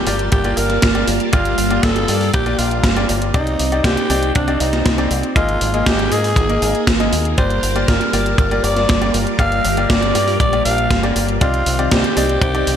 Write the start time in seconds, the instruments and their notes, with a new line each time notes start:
Already playing: string machine G3 A#3 F4 D5 A5, alto saxophone G4, impact
0.07 fingered electric bass G1, grand piano A#3 F4 G4 D5, open hi-hat
0.19 closed hi-hat
0.32 fingered electric bass G1, alto saxophone G4, kick, closed hi-hat
0.44 grand piano A#3 F4 G4 D5, closed hi-hat
0.57 fingered electric bass G1, alto saxophone A#4, open hi-hat
0.70 snare, closed hi-hat
0.82 fingered electric bass G1, kick, snare, closed hi-hat
0.95 grand piano A#3 F4 G4 D5, closed hi-hat
1.07 fingered electric bass G1, open hi-hat
1.20 closed hi-hat
1.33 fingered electric bass G1, grand piano A#3 F4 G4 D5, alto saxophone F4, kick, closed hi-hat
1.45 closed hi-hat
1.58 fingered electric bass G1, open hi-hat
1.71 grand piano A#3 F4 G4 D5, closed hi-hat
1.83 fingered electric bass G1, alto saxophone A4, kick, snare, closed hi-hat
1.96 closed hi-hat
2.08 fingered electric bass G2, grand piano A#3 F4 G4 D5, open hi-hat
2.21 open hi-hat
2.33 fingered electric bass A#1, alto saxophone G4, kick, closed hi-hat
2.46 grand piano A#3 F4 G4 D5, closed hi-hat
2.59 fingered electric bass A#1, alto saxophone F4, open hi-hat
2.71 closed hi-hat
2.84 fingered electric bass G1, kick, snare, closed hi-hat
2.96 grand piano A#3 F4 G4 D5, closed hi-hat
3.09 fingered electric bass G1, open hi-hat
3.22 closed hi-hat
3.34 fingered electric bass C2, string machine C4 D#4, grand piano C4 D#4 G4 D5, alto saxophone D#4, kick, closed hi-hat
3.47 closed hi-hat
3.59 fingered electric bass C2, open hi-hat
3.72 grand piano C4 D#4 G4 D5, closed hi-hat
3.84 fingered electric bass C2, alto saxophone G4, kick, snare, closed hi-hat
3.97 closed hi-hat
4.10 fingered electric bass C2, grand piano C4 D#4 G4 D5, open hi-hat
4.23 closed hi-hat
4.35 fingered electric bass C2, alto saxophone D4, kick, closed hi-hat
4.48 grand piano C4 D#4 G4 D5, closed hi-hat
4.60 fingered electric bass C2, alto saxophone D#4, open hi-hat
4.73 snare, closed hi-hat
4.86 fingered electric bass C2, kick, snare, closed hi-hat
4.98 grand piano C4 D#4 G4 D5, closed hi-hat
5.11 fingered electric bass C2, open hi-hat
5.23 closed hi-hat
5.36 fingered electric bass G#1, string machine A#3 D#4 G#4, grand piano A#3 D#4 G#4 D#5, alto saxophone F4, kick, closed hi-hat
5.49 closed hi-hat
5.61 fingered electric bass G#1, open hi-hat
5.74 grand piano A#3 D#4 G#4 D#5, closed hi-hat
5.86 fingered electric bass G#1, alto saxophone G4, kick, snare, closed hi-hat
5.99 closed hi-hat
6.12 fingered electric bass G#2, grand piano A#3 D#4 G#4 D#5, alto saxophone G#4, open hi-hat
6.24 open hi-hat
6.36 fingered electric bass G#1, kick, snare, closed hi-hat
6.49 grand piano A#3 D#4 G#4 D#5, closed hi-hat
6.62 fingered electric bass G#1, grand piano A#3 D#4 G#4 D#5, open hi-hat
6.75 closed hi-hat
6.87 fingered electric bass G#1, kick, snare, closed hi-hat
7.00 grand piano A#3 D#4 G#4 D#5, closed hi-hat
7.12 fingered electric bass D#2, open hi-hat
7.25 closed hi-hat
7.38 fingered electric bass G1, string machine G3 F4 A#4 D5 A5, grand piano A#3 F4 G4 D5, alto saxophone C5, kick, closed hi-hat
7.50 closed hi-hat
7.63 fingered electric bass G1, open hi-hat
7.76 grand piano A#3 F4 G4 D5, closed hi-hat
7.88 fingered electric bass G1, alto saxophone A#4, kick, snare, closed hi-hat
8.01 closed hi-hat
8.13 fingered electric bass G1, grand piano A#3 F4 G4 D5, open hi-hat
8.26 closed hi-hat
8.38 fingered electric bass G1, alto saxophone A#4, kick, closed hi-hat
8.51 grand piano A#3 F4 G4 D5, closed hi-hat
8.64 fingered electric bass G1, alto saxophone D5, open hi-hat
8.76 snare, closed hi-hat
8.89 fingered electric bass G1, kick, snare, closed hi-hat
9.02 grand piano A#3 F4 G4 D5, closed hi-hat
9.14 fingered electric bass G1, open hi-hat
9.27 closed hi-hat
9.39 fingered electric bass G1, grand piano A#3 F4 G4 D5, string machine G4, alto saxophone F5, kick, closed hi-hat
9.52 closed hi-hat
9.65 fingered electric bass G1, open hi-hat
9.77 grand piano A#3 F4 G4 D5, closed hi-hat
9.90 fingered electric bass G1, alto saxophone D5, kick, snare, closed hi-hat
10.02 closed hi-hat
10.15 fingered electric bass G2, grand piano A#3 F4 G4 D5, open hi-hat
10.28 open hi-hat
10.40 fingered electric bass A#1, alto saxophone D5, kick, closed hi-hat
10.53 grand piano A#3 F4 G4 D5, closed hi-hat
10.65 fingered electric bass A#1, alto saxophone F5, open hi-hat
10.78 closed hi-hat
10.90 fingered electric bass G1, kick, snare, closed hi-hat
11.03 grand piano A#3 F4 G4 D5, closed hi-hat
11.16 fingered electric bass G1, open hi-hat
11.29 closed hi-hat
11.41 fingered electric bass C2, string machine D#3 C4, grand piano C4 D#4 G4 D5, alto saxophone F4, kick, closed hi-hat
11.54 closed hi-hat
11.66 fingered electric bass C2, open hi-hat
11.79 grand piano C4 D#4 G4 D5, closed hi-hat
11.92 fingered electric bass C2, alto saxophone G4, kick, snare, closed hi-hat
12.04 closed hi-hat
12.17 fingered electric bass C2, grand piano C4 D#4 G4 D5, open hi-hat
12.29 closed hi-hat
12.42 fingered electric bass C2, alto saxophone G4, kick, closed hi-hat
12.55 grand piano C4 D#4 G4 D5, closed hi-hat
12.67 fingered electric bass C2, open hi-hat